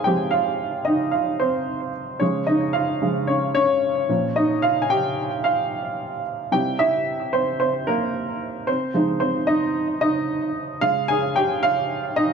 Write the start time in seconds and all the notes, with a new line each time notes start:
Already playing: C4 D#4 F4 G#4 C5 D#5 F5 G#5
0.04 F3 G#3 C4 G4 G5
0.31 F4 F5
0.85 D#4 D#5
1.11 F4 F5
1.40 C4 C5
2.20 C#3 F3 G#3 C#4 C#5
2.47 D#4 D#5
2.73 F4 F5
3.02 C#3 F3 G#3
3.27 C#4 C#5
3.55 C#4 C#5
4.09 A#2 F3 C#4
4.36 D#4 D#5
4.62 F4 F5
4.82 G#5
4.90 G4 G5
5.44 F4 F5
6.52 C3 G3 E4 G4 G5
6.79 E4 E5
7.33 C4 C5
7.60 C4 C5
7.87 A#3 A#4
8.67 C4 C5
8.94 F3 G#3 D#4
9.20 C4 C5
9.47 D#4 D#5
10.01 D#4 D#5
10.81 C#3 G#3 F4 F5
11.08 G#4 G#5
11.36 G4 G5
11.63 F4 F5
12.16 D#4 D#5